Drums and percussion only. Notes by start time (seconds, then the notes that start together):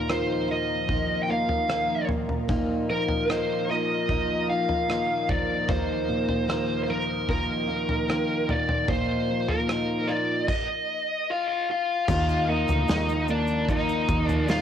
0.10 cross-stick
0.89 kick, floor tom
1.49 floor tom
1.70 cross-stick
2.09 floor tom
2.29 floor tom
2.49 kick, floor tom
3.08 floor tom
3.30 cross-stick
4.09 kick, floor tom
4.69 floor tom
4.90 cross-stick
5.29 kick, floor tom
5.69 kick, floor tom
6.29 floor tom
6.50 cross-stick
7.29 kick, floor tom
7.89 floor tom
8.10 cross-stick
8.49 floor tom
8.69 floor tom
8.88 kick, floor tom
9.49 floor tom
9.69 cross-stick
10.48 kick, crash
12.08 kick, floor tom, crash, shaker
12.29 shaker
12.68 floor tom, shaker
12.88 snare, shaker
13.09 shaker
13.28 shaker
13.47 shaker
13.69 kick, shaker
13.89 shaker
14.08 kick, shaker
14.29 floor tom, shaker
14.48 snare, shaker